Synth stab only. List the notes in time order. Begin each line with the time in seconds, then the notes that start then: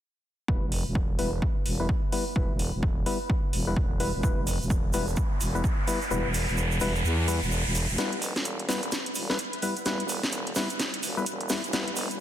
0.48 G3 B3 E4 B4
1.19 G3 B3 E4 B4
1.80 G3 B3 E4 B4
2.12 G3 B3 E4 B4
2.36 G3 B3 E4 B4
3.06 G3 B3 E4 B4
3.67 G3 B3 E4 B4
4.00 G3 B3 E4 B4
4.23 G3 B3 E4 B4
4.94 G3 B3 E4 B4
5.55 G3 B3 E4 B4
5.87 G3 B3 E4 B4
6.11 G3 B3 E4 B4
6.81 G3 B3 E4 B4
7.28 G3 B3 E4 B4
7.98 G3 B3 E4 B4
8.69 G3 B3 E4 B4
9.30 G3 B3 E4 B4
9.62 G3 B3 E4 B4
9.86 G3 B3 E4 B4
10.56 G3 B3 E4 B4
11.17 G3 B3 E4 B4
11.50 G3 B3 E4 B4
11.73 G3 B3 E4 B4